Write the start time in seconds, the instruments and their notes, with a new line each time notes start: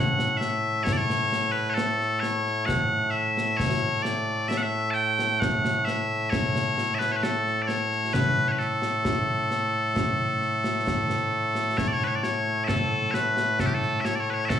Already playing: bagpipes A2 A3 F#5
0.19 snare
0.37 bagpipes E5, snare
0.83 bagpipes C#5, concert bass drum, snare
0.93 bagpipes D5
0.97 bagpipes C#5
1.10 snare
1.32 snare
1.52 bagpipes B4
1.70 bagpipes C#5
1.74 bagpipes A4, snare
2.01 snare
2.20 bagpipes C#5, snare
2.46 snare
2.66 bagpipes F#5, concert bass drum, snare
3.11 bagpipes E5
3.37 snare
3.57 bagpipes C#5, concert bass drum, snare
4.03 bagpipes D5, snare
4.48 bagpipes E5, snare
4.57 bagpipes F#5
4.63 bagpipes E5
4.91 bagpipes G5 A5
5.19 snare
5.40 bagpipes F#5, concert bass drum, snare
5.65 snare
5.85 bagpipes E5, snare
6.30 bagpipes C#5, concert bass drum, snare
6.56 snare
6.78 snare
6.95 bagpipes E5
6.99 bagpipes B4, snare
7.12 bagpipes C#5
7.16 bagpipes B4
7.23 bagpipes A4, snare
7.46 snare
7.62 bagpipes D5
7.67 bagpipes C#5, snare
7.91 snare
8.14 bagpipes B4, concert bass drum, snare
8.48 bagpipes B4 C#5
8.58 bagpipes A4, snare
8.82 snare
9.05 concert bass drum, snare
9.51 snare
9.96 concert bass drum, snare
10.42 snare
10.64 snare
10.87 concert bass drum, snare
11.10 snare
11.55 snare
11.77 bagpipes C#5, concert bass drum, snare
11.88 bagpipes D5
11.93 bagpipes C#5
12.01 bagpipes B4, snare
12.08 bagpipes C#5
12.16 bagpipes D5
12.23 bagpipes C#5, snare
12.64 bagpipes A4 E5
12.68 concert bass drum, snare
13.11 bagpipes B4 C#5, snare
13.37 snare
13.59 bagpipes A4, concert bass drum, snare
13.66 bagpipes G4
13.74 bagpipes A4
13.82 snare
14.01 bagpipes E5
14.05 bagpipes C#5, snare
14.16 bagpipes D5
14.20 bagpipes C#5
14.30 bagpipes B4 C#5
14.45 bagpipes E5
14.49 bagpipes A4, concert bass drum, snare